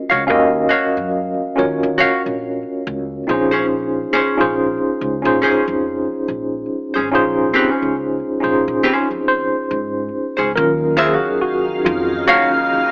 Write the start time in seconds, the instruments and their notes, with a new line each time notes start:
Already playing: tine electric piano C#4 F4 F#4 A#4 D#5
0.10 upright bass C#2, hollow-body jazz guitar F#4 C#5 F5
0.27 upright bass D#2, tine electric piano C#4 F#4 A#4 F5
0.31 tine electric piano D#5
0.69 hollow-body jazz guitar F#4 C#5 F5
0.97 upright bass F#2
1.56 upright bass D#2, tine electric piano C#4 F4 F#4 A#4 C#5
1.83 upright bass D#3
1.98 hollow-body jazz guitar F#4 C#5 F5, muted upright bass stroke
2.26 upright bass A#1
2.87 upright bass C#2
3.27 upright bass A#1, tine electric piano C4 D#4 F4 G#4 C5
3.33 tine electric piano C#4
3.51 hollow-body jazz guitar C#4 G#4 C5
4.13 hollow-body jazz guitar C#4 G#4 C5
4.37 upright bass A#1, tine electric piano C#4 D#4 F4 G#4 C5
5.01 upright bass C#2
5.22 upright bass A#2, tine electric piano C#4 D#4 F4 G#4
5.26 tine electric piano C5
5.42 hollow-body jazz guitar C#4 G#4 C5, muted upright bass stroke
5.68 upright bass F2
6.28 upright bass A#1
6.94 upright bass G#1, hollow-body jazz guitar C#4 G#4 C5
7.11 upright bass A#1, tine electric piano C#4 D#4 F4 G#4
7.15 tine electric piano C5
7.54 hollow-body jazz guitar C4 G4 B4
7.71 hollow-body jazz guitar C#4 G#4 C5
7.82 upright bass C#2
8.40 upright bass A#1, tine electric piano C#4 D#4 F4 G#4 C5
8.68 upright bass A#2
8.83 hollow-body jazz guitar C#4 G#4 C5, muted upright bass stroke
9.11 upright bass F2
9.28 tine electric piano C5
9.71 upright bass G#2
10.37 upright bass C#2, hollow-body jazz guitar C#4 G#4 C5
10.55 upright bass D#2, string machine D#3 C#4 D#4 F5, tine electric piano F#3 C#4 F4 A#4
10.97 hollow-body jazz guitar F4 C5 E5, tine electric piano G#4
11.14 hollow-body jazz guitar F#4 C#5 F5
11.25 muted upright bass stroke
11.41 tine electric piano F#4
11.68 muted upright bass stroke
11.85 upright bass F2, tine electric piano F4
12.27 saxophone section C#3 A#3 F5, hollow-body jazz guitar F#4 C#5 F5
12.71 muted upright bass stroke